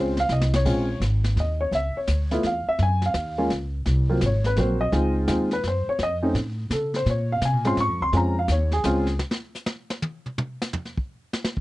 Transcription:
Already playing: C#2 G#3 C4 C#4 F4
0.00 C5
0.17 F5, snare
0.29 C2 D#5, snare
0.41 snare
0.54 C#5, snare
0.65 A#1 G#3 C4 C#4 F4, brush sweep, kick, snare, crash
1.00 G#1, snare, hi-hat pedal
1.24 snare
1.36 D#2 D#5, snare
1.61 C#5
1.71 C#2 E5, brush sweep, snare
1.96 C#5, muted upright bass stroke
2.07 D2, snare, hi-hat pedal
2.31 A3 B3 E4 F4, snare
2.43 E2 F5, snare
2.67 E5, muted upright bass stroke
2.79 F#2, brush sweep, snare
2.83 G#5
3.02 F5, snare
3.14 D#2, snare, hi-hat pedal
3.38 G#3 A#3 C#4 F4
3.50 C#2, snare
3.86 C2, brush sweep, snare
4.09 F#3 A#3 C4 F4
4.21 G#1, snare, hi-hat pedal
4.26 C#5
4.44 B4, snare
4.56 A#1 F#3 A#3 C4 F#4 C5, snare
4.81 D#5
4.92 C#2 G#3 C4 D#4 F4, brush sweep, snare
5.27 D#2 G#3 C4 D#4 F4, snare, hi-hat pedal
5.51 B4, snare
5.63 F#2, snare
5.68 C5
5.87 C#5, muted upright bass stroke
5.99 F2, brush sweep, snare
6.03 D#5
6.22 A3 C4 C#4 D#4
6.34 A2, snare
6.70 C#3 A4, snare, hi-hat pedal
6.94 C5, snare
7.06 A#2, brush sweep, snare
7.10 C#5
7.32 F5
7.41 C3, snare, hi-hat pedal
7.45 G#5
7.53 A#2
7.65 G#2 G#3 C4 C#4 F4 C6, snare
7.77 G#2 C#6, snare
7.88 F2
8.01 C#2 C6
8.12 F2 G#3 C4 C#4 F4, brush sweep, snare
8.17 A#5
8.39 F5
8.48 D#2 C#5, snare, hi-hat pedal
8.71 G#4, snare
8.84 C#2 G#3 C4 C#4 F4, snare, hi-hat pedal
9.07 snare
9.19 snare
9.31 snare
9.55 snare, hi-hat pedal
9.66 snare
9.90 snare
10.02 high tom
10.26 mid tom
10.38 mid tom
10.62 snare, hi-hat pedal
10.73 floor tom
10.85 snare
10.98 kick
11.33 snare
11.45 snare
11.57 kick

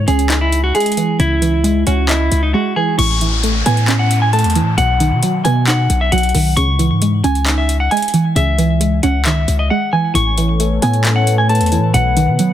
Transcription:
Already playing: C#3 E3 G#3
0.08 C#2 C#4 G#4, closed hi-hat
0.19 closed hi-hat
0.30 D#4, clap, closed hi-hat
0.41 E4
0.52 closed hi-hat
0.64 F#4
0.75 G#3 G#4, closed hi-hat
0.80 closed hi-hat
0.86 closed hi-hat
0.92 closed hi-hat
0.97 E3, closed hi-hat
1.19 C#2 C#3 E4, closed hi-hat
1.42 E3, closed hi-hat
1.64 G#3, closed hi-hat
1.87 C#2 C#4 F#4, closed hi-hat
2.09 E4 D#5, clap, closed hi-hat
2.32 C#2, closed hi-hat
2.43 D#4
2.54 G#3 F#4
2.76 E3 G#4
2.98 A1 A2 C#6, closed hi-hat, crash, downlifter
3.21 E3, closed hi-hat
3.43 A3, closed hi-hat
3.66 A2 B3 G#5, closed hi-hat
3.77 closed hi-hat
3.88 C#4, clap, closed hi-hat
3.99 F#5
4.11 closed hi-hat
4.22 G#5
4.33 A3 A5, closed hi-hat
4.39 closed hi-hat
4.44 E2, closed hi-hat
4.50 closed hi-hat
4.55 E3, closed hi-hat
4.61 A2
4.78 B1 B2 F#5, closed hi-hat
5.00 D#3, closed hi-hat
5.11 B2
5.23 F#3, closed hi-hat
5.44 B2 B3 G#5, closed hi-hat
5.67 D#4 F#5, clap, closed hi-hat
5.90 B1, closed hi-hat
6.01 E5
6.12 B1 F#3 F#5, closed hi-hat
6.18 closed hi-hat
6.23 closed hi-hat
6.29 closed hi-hat
6.35 B1 D#3, open hi-hat
6.57 C#2 C#3 C#6, closed hi-hat
6.79 E3, closed hi-hat
6.91 G#2
7.02 G#3, closed hi-hat
7.24 C#2 C#4 G#5, closed hi-hat
7.35 closed hi-hat
7.46 D#4, clap, closed hi-hat
7.58 E5
7.69 closed hi-hat
7.80 F#5
7.91 G#3 G#5, closed hi-hat
7.97 closed hi-hat
8.02 closed hi-hat
8.08 closed hi-hat
8.14 E3, closed hi-hat
8.36 C#2 C#3 E5, closed hi-hat
8.58 E3, closed hi-hat
8.80 G#3, closed hi-hat
9.03 C#2 C#4 F#5, closed hi-hat
9.25 D#3 E5, clap, closed hi-hat
9.48 C#2, closed hi-hat
9.59 D#5
9.70 G#3 F#5
9.93 E3 G#5
10.14 A1 A2 A3 A4 B4 C#5 C#6, closed hi-hat
10.38 E3, closed hi-hat
10.60 A3, closed hi-hat
10.82 A2 B3 G#5, closed hi-hat
10.94 closed hi-hat
11.05 C#4, clap, closed hi-hat
11.16 F#5
11.27 closed hi-hat
11.38 G#5
11.49 A3 A5, closed hi-hat
11.55 closed hi-hat
11.61 E2, closed hi-hat
11.66 closed hi-hat
11.72 E3, closed hi-hat
11.77 A2
11.94 B1 B2 B3 F#5, closed hi-hat
12.17 D#3, closed hi-hat
12.28 B2
12.39 F#3, closed hi-hat

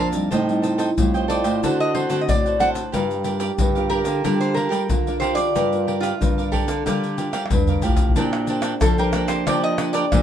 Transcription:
Already playing: F2 A#2 F3 A3 D4 A#4
0.00 D5 F5 A5
0.13 G3 C4 D#4, pandeiro, shaker
0.31 A2 D#4 A4 C5 D#5 G5, pandeiro, shaker, surdo
0.49 G3 C4 D#4, pandeiro, shaker
0.62 A4 C5 D#5 G5, pandeiro, shaker
0.78 A4 C5 D#5 G5, pandeiro, shaker
0.97 A2 G3 C4 D#4 F4, pandeiro, shaker, surdo
1.14 C5 D#5 G5, pandeiro, shaker
1.28 A4 C5 D5 D#5 G5, pandeiro, shaker
1.44 A2 C5 D#5 G5, pandeiro, shaker
1.63 D3 A3 C4 D4 F#4 A4 C5 F#5, pandeiro, shaker, surdo
1.80 D#5, pandeiro, shaker
1.94 A3 C4 D4 F#4 A4 C5 F#5, pandeiro
2.09 D3 A3 C4 D4 F#4 A4 C5 F#5, pandeiro, shaker
2.21 D#5
2.29 A2 D5, pandeiro, shaker, surdo
2.45 A4 C5 F#5, pandeiro, shaker
2.59 A3 C4 D4 F#4 A4 C5 F#5, pandeiro, shaker
2.75 pandeiro, shaker
2.92 G2 G3 D4 F4 G4 A#4 D5 F5, pandeiro, shaker, surdo
3.11 pandeiro, shaker
3.24 D4 F4 G4 A#4 D5 F5, pandeiro, shaker
3.40 G4 A#4 D5 F5, pandeiro, shaker
3.58 G2 D3, pandeiro, shaker, surdo
3.75 D4 F4 A#4 D5 F5, pandeiro, shaker
3.90 G4 A#4 D5 F5, pandeiro
4.05 D3 A#4 D5 F5, pandeiro, shaker
4.24 D3 G3 D4 F4 G4 A#4 D5 F5, pandeiro, shaker, surdo
4.40 C5, pandeiro, shaker
4.54 D4 G4 A#4 D5 F5, pandeiro
4.70 G3 G4 A#4 D5 F5, pandeiro, shaker
4.89 D3 F4, pandeiro, shaker, surdo
5.07 D4 F4 A#4 D5 F5, pandeiro, shaker
5.20 G4 A#4 C5 D5 F5, pandeiro
5.35 D4 F4 A#4 D5, pandeiro, shaker
5.55 G2 G3 G4 A#4 D5 F5, pandeiro, shaker, surdo
5.73 D4 F4 A#4, pandeiro, shaker
5.87 G4 A#4 D5 F5, pandeiro
6.00 F4 G4 A#4 D5 F5, pandeiro, shaker
6.20 G2 D3 D4 F4 A#4, pandeiro, shaker, surdo
6.38 A#4 D5 F5, pandeiro, shaker
6.52 G4 A4 A#4 D5 F5, pandeiro, surdo
6.68 D3 A#4 D5 F5, pandeiro, shaker
6.86 D3 G3 D4 F4 G4 A#4 D5 F5, pandeiro, shaker, surdo
7.03 pandeiro, shaker
7.18 D4 F4 G4 A#4 D5 F5, pandeiro, shaker
7.33 G3 G4 A#4 D5 F5, pandeiro, tamborim, shaker
7.46 tamborim
7.50 G2 D3 D4, pandeiro, shaker, surdo
7.56 surdo
7.67 A#4 D5 F5, surdo, pandeiro, shaker
7.82 A2 D4 F4 G4 A#4 D5 F5, pandeiro, shaker
7.88 surdo
7.97 pandeiro, shaker, surdo
8.09 surdo
8.16 A#2 A#3 D4 G4 A#4 C5 D5 G5, pandeiro, shaker, surdo
8.33 pandeiro, tamborim, shaker
8.47 D4 G4 A#4 C5 D5 G5, pandeiro, shaker
8.62 D4 A#4 D5 G5, pandeiro, tamborim, shaker
8.81 F3 A4, pandeiro, tamborim, shaker, surdo
8.98 D4 G4 A#4 C5 D5 G5, pandeiro, shaker
9.13 A#3 D4 A#4 D5 G5, pandeiro, tamborim, shaker
9.28 D4 G4 A#4 C5 D5 G5, pandeiro, tamborim, shaker
9.46 F3 A#3 D4 G4 A#4 C5 D5 G5, pandeiro, tamborim, shaker, surdo
9.64 D#5, pandeiro, shaker
9.78 D4 A#4 D5 G5, pandeiro, tamborim, shaker
9.93 D4 G4 A#4 C5 D5 G5, pandeiro, shaker
10.12 A#2 F3, pandeiro, tamborim, shaker, surdo

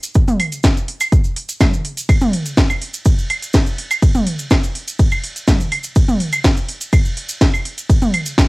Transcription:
0.03 closed hi-hat, cabasa
0.14 kick, closed hi-hat, cabasa
0.28 mid tom, cabasa
0.40 open hi-hat, claves
0.52 closed hi-hat, cabasa
0.63 kick, snare, closed hi-hat, cabasa
0.77 cabasa
0.88 open hi-hat
1.00 closed hi-hat, cabasa, claves
1.12 kick, closed hi-hat, cabasa
1.24 cabasa
1.36 open hi-hat
1.49 closed hi-hat, cabasa
1.60 kick, snare, closed hi-hat, mid tom, cabasa, claves
1.74 cabasa
1.85 open hi-hat
1.97 closed hi-hat, cabasa
2.09 kick, closed hi-hat, ride, cabasa, claves
2.21 mid tom, cabasa
2.33 open hi-hat
2.46 closed hi-hat, cabasa
2.57 kick, snare, closed hi-hat, ride, cabasa
2.70 cabasa, claves
2.82 open hi-hat
2.94 closed hi-hat, cabasa
3.05 kick, closed hi-hat, ride, cabasa
3.18 cabasa
3.30 open hi-hat, claves
3.42 closed hi-hat, cabasa
3.53 kick, snare, closed hi-hat, ride, cabasa
3.66 cabasa
3.78 open hi-hat
3.91 closed hi-hat, cabasa, claves
4.02 kick, closed hi-hat, ride, cabasa
4.15 mid tom, cabasa
4.27 open hi-hat
4.39 closed hi-hat, cabasa
4.50 kick, snare, closed hi-hat, ride, cabasa, claves
4.63 cabasa
4.75 open hi-hat
4.88 closed hi-hat, cabasa
4.99 kick, closed hi-hat, ride, cabasa
5.11 cabasa, claves
5.24 open hi-hat
5.36 closed hi-hat, cabasa
5.47 kick, snare, closed hi-hat, mid tom, ride, cabasa
5.60 cabasa
5.72 open hi-hat, claves
5.83 closed hi-hat, cabasa
5.96 kick, closed hi-hat, ride, cabasa
6.08 mid tom, cabasa
6.20 open hi-hat
6.33 closed hi-hat, cabasa, claves
6.44 kick, snare, closed hi-hat, ride, cabasa
6.57 cabasa
6.69 open hi-hat
6.81 closed hi-hat, cabasa
6.93 kick, closed hi-hat, ride, cabasa, claves
7.05 cabasa
7.17 open hi-hat
7.29 closed hi-hat, cabasa
7.41 kick, snare, closed hi-hat, ride, cabasa
7.54 cabasa, claves
7.65 open hi-hat
7.78 closed hi-hat, cabasa
7.90 kick, closed hi-hat, ride, cabasa
8.02 mid tom, cabasa
8.14 open hi-hat, claves
8.26 closed hi-hat, cabasa
8.38 kick, snare, closed hi-hat, ride, cabasa

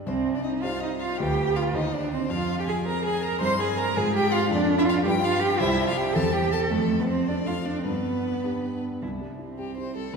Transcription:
Already playing: G4 D#5
0.06 C2 C4 C5
0.35 D4 D5
0.43 D#4 D#5
0.62 D#4 F4 G4 C5 F5
0.81 D#4 D#5
0.99 F4 F5
1.18 D2 F4 G4 B4 G5
1.56 F4 F5
1.73 D#2 D#4 G4 C5 D#5
1.94 D4 D5
2.12 C4 C5
2.30 F2 F4 F5
2.59 G4 G5
2.67 G#4 G#5
2.85 C4 G#4 A#4 C5 A#5
3.05 G#4 G#5
3.23 A#4 A#5
3.41 G2 C4 E4 A#4 C5 C6
3.60 G#4 G#5
3.78 A#4 A#5
3.96 G#2 C4 F4 G#4 G#5
4.15 G4 G5
4.33 F4 F5
4.51 F2 D4 F4 A4 D5
4.79 E4 E5
4.85 F4
4.89 F5
5.03 G2 D4 F4 G4 B4 G5
5.21 F4 F5
5.40 G4 G5
5.59 C2 C4 E4 C5 E5
5.87 F4 F5
5.96 G4 G5
6.14 E2 C4 E4 A4 C5 A5
6.33 G4 G5
6.52 A4 A5
6.70 F2 A3 A4
7.00 B3 B4
7.08 C4 C5
7.27 C4 D4 A4 D5
7.46 F4 F5
7.65 D4 D5
7.79 C4
7.84 G2 B3 B4
8.44 B3 D4 G4
9.02 C2 E4
9.20 G3 D4
9.39 C4 E4
9.58 G4
9.77 E4 C5
9.96 G3 A4
10.13 D2 B3 B4

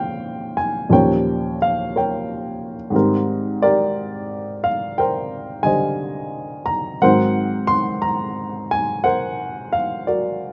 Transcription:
Already playing: A#2 F3 G#3 C#4 C#5 F5 G5
0.57 G#5
0.89 D#2 A#2 F3 G3 C#4 A#4 C#5 G5
1.62 F5
1.96 A#4 C#5 G5
2.90 G#2 D#3 G3 C4
2.96 A#4
3.62 G4 A#4 D5
4.64 F5
4.98 A#4 C5 G5
5.63 D3 G3 C5 D#5 G#5
6.66 A#5
7.02 G#2 D#3 F#3 C4 A#4 C5 F#5
7.67 C6
8.02 A#5
8.71 G#5
9.04 A#4 C5 F#5
9.73 F5
10.07 F#4 A#4 D5

